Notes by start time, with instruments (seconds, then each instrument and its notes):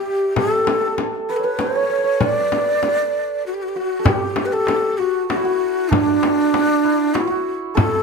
Already playing: ney G4, santur G4 B4 D5 E5
0.36 santur A4, ney A4, frame drum
0.44 santur A4
0.51 santur A4
0.58 santur A4
0.65 santur A4, frame drum
0.74 santur A4
0.81 santur A4
0.98 frame drum
1.29 ney B4, santur B4
1.36 ney A4, santur C#5
1.44 ney B4, santur B4
1.59 santur C#5, ney C#5, frame drum
1.67 santur C#5
1.75 santur C#5
1.82 santur C#5
1.90 santur C#5
1.98 santur C#5
2.04 santur C#5
2.21 santur D5, ney D5, frame drum
2.52 frame drum
2.83 frame drum
3.46 ney F#4
3.54 ney G4
3.62 ney F#4
3.68 ney G4
3.76 santur F#4, ney F#4
3.99 santur A4
4.05 ney G4, santur G4, tombak dum, frame drum
4.36 tombak tek, frame drum
4.45 ney B4
4.52 ney A4, santur A4
4.67 tombak tek, frame drum
4.98 ney F#4, santur F#4, tombak ka
5.28 ney F#4, santur F#4, tombak tek, frame drum
5.36 santur E4
5.45 santur F#4, tombak ka
5.89 ney D4, santur D4, tombak dum, frame drum
6.23 tombak tek, frame drum
6.54 tombak tek, frame drum
6.84 santur E4, tombak ka
7.14 ney F#4, santur F#4, tombak tek, frame drum
7.20 santur E4
7.27 santur F#4, tombak ka
7.75 santur A4, ney A4, frame drum, tombak dum